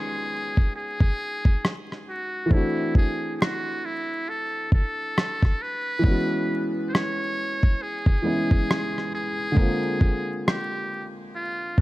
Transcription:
Already playing: felt piano D#3 G#3 B3 C#4 F#4, muted trumpet G#4
0.57 kick
0.76 muted trumpet G#4
1.00 kick
1.45 kick
1.65 cross-stick
1.92 cross-stick
2.09 muted trumpet F#4
2.46 felt piano E3 A3
2.51 felt piano C4 D4, muted trumpet E4, kick
2.56 felt piano F#4
2.95 muted trumpet G#4, kick
3.36 muted trumpet G#4
3.41 muted trumpet F#4, cross-stick
3.85 muted trumpet E4
4.29 muted trumpet A4
4.72 muted trumpet A4, kick
5.18 cross-stick
5.43 kick, cross-stick
5.62 muted trumpet B4
5.99 felt piano E3 G#3
6.04 felt piano B3 C#4, kick
6.10 felt piano F#4
6.89 muted trumpet C5
6.94 muted trumpet C#5, cross-stick
7.63 kick
7.82 muted trumpet G#4
8.06 kick
8.22 felt piano E3 G#3 B3
8.26 felt piano C#4 E4
8.51 kick
8.71 cross-stick
8.98 cross-stick
9.15 muted trumpet G#4
9.52 felt piano D3 G#3
9.57 felt piano A#3 C4, kick
9.62 felt piano F4
10.01 kick
10.47 muted trumpet G4, cross-stick
11.35 muted trumpet F4
11.78 kick

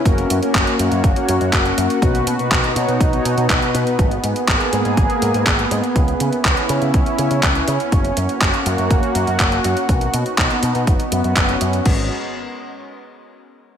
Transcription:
Already playing: analog synth pad C#4
0.05 picked electric bass F#1, analog synth pad A#3 F#4, analog polysynth A#3 C#4 F#4 A#4, kick, closed hi-hat
0.18 closed hi-hat
0.30 picked electric bass F#2, closed hi-hat
0.42 analog polysynth A#3 C#4 F#4 A#4, closed hi-hat
0.55 picked electric bass F#1, kick, clap, closed hi-hat
0.67 closed hi-hat
0.79 picked electric bass F#2, analog polysynth A#3 C#4 F#4 C#5, closed hi-hat
0.92 picked electric bass F#2, closed hi-hat
1.04 picked electric bass F#1, kick, closed hi-hat
1.16 analog polysynth A#3 C#4 F#4 C#5, closed hi-hat
1.29 picked electric bass F#2, closed hi-hat
1.41 picked electric bass F#2, closed hi-hat
1.53 picked electric bass F#1, analog polysynth A#3 C#4 F#4 A#4, kick, clap, closed hi-hat
1.65 closed hi-hat
1.78 picked electric bass F#2, closed hi-hat
1.90 closed hi-hat
2.02 picked electric bass B1, analog polysynth B2 B3 D#4 F#4 B4, analog synth pad B3 D#4, kick, closed hi-hat
2.15 closed hi-hat
2.27 picked electric bass B2, closed hi-hat
2.39 analog polysynth B2 B3 D#4 F#4 B4, closed hi-hat
2.51 picked electric bass B1, kick, clap, closed hi-hat
2.64 closed hi-hat
2.76 picked electric bass B2, analog polysynth B2 B3 D#4 F#4 C#5, closed hi-hat
2.88 picked electric bass B2, closed hi-hat
3.00 picked electric bass B1, kick, closed hi-hat
3.13 analog polysynth B2 B3 D#4 F#4 C#5, closed hi-hat
3.25 picked electric bass B2, closed hi-hat
3.37 picked electric bass B2, closed hi-hat
3.50 picked electric bass B1, analog polysynth B2 B3 D#4 F#4 B4, kick, clap, closed hi-hat
3.62 closed hi-hat
3.74 picked electric bass B2, closed hi-hat
3.87 closed hi-hat
3.99 picked electric bass G#1, analog synth pad A#3 G#4, kick, closed hi-hat
4.11 closed hi-hat
4.24 picked electric bass G#2, closed hi-hat
4.36 closed hi-hat
4.48 picked electric bass G#1, kick, clap, closed hi-hat
4.60 closed hi-hat
4.73 picked electric bass G#2, closed hi-hat
4.85 picked electric bass G#2, closed hi-hat
4.97 picked electric bass G#1, kick, closed hi-hat
5.10 closed hi-hat
5.22 picked electric bass G#2, closed hi-hat
5.34 picked electric bass G#2, closed hi-hat
5.46 picked electric bass G#1, kick, clap, closed hi-hat
5.59 closed hi-hat
5.71 picked electric bass G#2, closed hi-hat
5.84 closed hi-hat
5.96 picked electric bass C#2, analog synth pad C#4 E4, kick, closed hi-hat
6.08 closed hi-hat
6.20 picked electric bass C#3, closed hi-hat
6.33 closed hi-hat
6.45 picked electric bass C#2, kick, clap, closed hi-hat
6.57 closed hi-hat
6.69 picked electric bass C#3, closed hi-hat
6.82 picked electric bass C#3, closed hi-hat
6.94 picked electric bass C#2, kick, closed hi-hat
7.06 closed hi-hat
7.18 picked electric bass C#3, closed hi-hat
7.31 picked electric bass C#3, closed hi-hat
7.43 picked electric bass C#2, kick, clap, closed hi-hat
7.55 closed hi-hat
7.68 picked electric bass C#3, closed hi-hat
7.80 closed hi-hat
7.92 picked electric bass F#1, analog synth pad A#3 F#4, kick, closed hi-hat
8.05 closed hi-hat
8.17 picked electric bass F#2, closed hi-hat
8.29 closed hi-hat
8.41 picked electric bass F#1, kick, clap, closed hi-hat
8.54 closed hi-hat
8.66 picked electric bass F#2, closed hi-hat
8.78 picked electric bass F#2, closed hi-hat
8.91 picked electric bass F#1, kick, closed hi-hat
9.03 closed hi-hat
9.15 picked electric bass F#2, closed hi-hat
9.27 picked electric bass F#2, closed hi-hat
9.40 picked electric bass F#1, kick, clap, closed hi-hat
9.52 closed hi-hat
9.64 picked electric bass F#2, closed hi-hat
9.77 closed hi-hat
9.89 picked electric bass B1, analog synth pad B3 D#4, kick, closed hi-hat
10.01 closed hi-hat
10.14 picked electric bass B2, closed hi-hat
10.26 closed hi-hat
10.38 picked electric bass B1, kick, clap, closed hi-hat
10.51 closed hi-hat
10.63 picked electric bass B2, closed hi-hat
10.75 picked electric bass B2, closed hi-hat
10.87 picked electric bass F#1, analog synth pad B3 C#4 F#4, kick, closed hi-hat
11.00 closed hi-hat
11.12 picked electric bass F#2, closed hi-hat
11.24 picked electric bass F#2, closed hi-hat
11.36 picked electric bass F#1, kick, clap, closed hi-hat
11.49 closed hi-hat
11.61 picked electric bass F#2, closed hi-hat
11.73 closed hi-hat
11.86 picked electric bass G#1, kick, crash

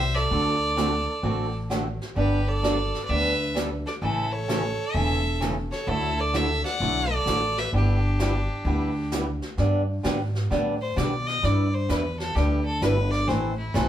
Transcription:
Already playing: upright bass C2, fiddle C5 E5
0.15 fiddle A4 D5, snare
0.30 upright bass D2, steel-string acoustic guitar D3 A3 C4 F#4 A4, brush sweep
0.77 steel-string acoustic guitar D3 A3 C4 F#4 A4, snare, hi-hat pedal
1.22 upright bass A1, steel-string acoustic guitar D3 A3 C4 F#4 A4, brush sweep
1.70 steel-string acoustic guitar D3 A3 C4 F#4 A4, snare, hi-hat pedal
2.02 snare
2.15 upright bass G1, steel-string acoustic guitar G3 B3 D4 A4, fiddle G4 B4, brush sweep
2.48 fiddle A4 D5
2.62 steel-string acoustic guitar G3 B3 D4 A4, snare, hi-hat pedal
2.94 snare
3.04 fiddle B4 D5
3.09 upright bass D2, steel-string acoustic guitar G3 B3 D4 A4, fiddle B4 E5, brush sweep
3.55 steel-string acoustic guitar G3 B3 D4 A4, snare, hi-hat pedal
3.86 fiddle A4 D5, snare
4.02 upright bass A1, steel-string acoustic guitar C#3 E3 A3 C#4 A4, fiddle E4 A4, brush sweep
4.32 fiddle A4 C#5
4.48 steel-string acoustic guitar C#3 E3 A3 C#4 A4, snare, hi-hat pedal
4.94 upright bass E1, steel-string acoustic guitar C#3 E3 A3 C#4 A4, fiddle A4 E5, brush sweep
5.40 steel-string acoustic guitar C#3 E3 A3 C#4 A4, snare, hi-hat pedal
5.71 fiddle A4 C#5, snare
5.87 upright bass D2, steel-string acoustic guitar D3 F#3 A3 E4 F#4, fiddle E4 A4, brush sweep
6.18 fiddle A4 D5
6.33 steel-string acoustic guitar D3 F#3 A3 E4 F#4, fiddle A4 E5, snare, hi-hat pedal
6.64 fiddle D5 F#5, snare
6.80 upright bass B1, steel-string acoustic guitar D3 F#3 A3 E4 F#4, brush sweep
7.11 fiddle A4 D5
7.26 upright bass A1, steel-string acoustic guitar D3 F#3 A3 E4 F#4, snare, hi-hat pedal
7.57 fiddle B4 E5, snare
7.73 upright bass G1, steel-string acoustic guitar G3 B3 E4 G4, fiddle D4 G4, brush sweep
8.19 steel-string acoustic guitar G3 B3 E4 G4, snare, hi-hat pedal
8.65 upright bass D2, steel-string acoustic guitar G3 B3 E4 G4, brush sweep
9.12 steel-string acoustic guitar G3 B3 E4 G4, snare, hi-hat pedal
9.42 snare
9.57 upright bass G2, steel-string acoustic guitar D3 G3 B3 D4 G4, brush sweep, snare
10.03 upright bass G#2, steel-string acoustic guitar D3 G3 B3 D4 G4, snare, hi-hat pedal
10.35 snare
10.50 upright bass A2, steel-string acoustic guitar D3 G3 B3 D4 G4, brush sweep, snare
10.81 fiddle C5
10.96 upright bass B2, steel-string acoustic guitar D3 G3 B3 D4 G4, fiddle D5, snare, hi-hat pedal
11.27 fiddle D#5, snare
11.43 upright bass G2, steel-string acoustic guitar G3 D4 E4 B4, fiddle D5, brush sweep, snare
11.74 fiddle C5
11.89 upright bass E2, steel-string acoustic guitar G3 D4 E4 B4, fiddle B4, snare, hi-hat pedal
12.19 fiddle A4, snare
12.35 upright bass D2, steel-string acoustic guitar G3 D4 E4 B4, fiddle G4, brush sweep, snare
12.65 fiddle A4
12.81 upright bass G1, steel-string acoustic guitar G3 D4 E4 B4, fiddle B4, snare, hi-hat pedal
13.11 fiddle D5, snare
13.27 upright bass A1, steel-string acoustic guitar E3 A3 C4 E4 A4, fiddle C5, brush sweep, snare
13.58 fiddle E4
13.74 upright bass B1, steel-string acoustic guitar E3 A3 C4 E4 A4, fiddle A4, snare, hi-hat pedal

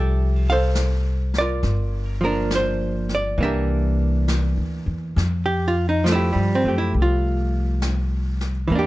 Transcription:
Already playing: upright bass C2, hollow-body jazz guitar F3 G4 A4 E5
0.50 hollow-body jazz guitar A4 C5 F5
0.75 snare, hi-hat pedal
1.34 snare
1.38 hollow-body jazz guitar F4 A#4 D5
1.63 upright bass G1, brush sweep, snare
2.21 hollow-body jazz guitar F3 A#3 A#4
2.26 hollow-body jazz guitar D4
2.51 snare, hi-hat pedal
2.55 hollow-body jazz guitar C5
3.09 snare
3.15 hollow-body jazz guitar D5
3.38 upright bass C2, hollow-body jazz guitar E3 A#3, brush sweep
3.43 hollow-body jazz guitar D4 G4 A#4 E5
4.28 snare, hi-hat pedal
4.57 upright bass D2
4.86 upright bass E2
5.16 upright bass F2, brush sweep, snare
5.46 hollow-body jazz guitar G4
5.68 hollow-body jazz guitar F4
5.89 hollow-body jazz guitar D#4
6.04 hollow-body jazz guitar F3 A3, snare, hi-hat pedal
6.12 hollow-body jazz guitar E4 G4
6.33 upright bass G2, hollow-body jazz guitar G3
6.55 hollow-body jazz guitar C4
6.64 upright bass F#2, hollow-body jazz guitar A3
6.68 hollow-body jazz guitar G4
6.78 hollow-body jazz guitar E4
6.94 upright bass C2, brush sweep
7.02 hollow-body jazz guitar F4
7.82 snare, hi-hat pedal
8.41 snare
8.68 upright bass E2, hollow-body jazz guitar E3, brush sweep
8.72 hollow-body jazz guitar A#3 D4
8.79 hollow-body jazz guitar G4

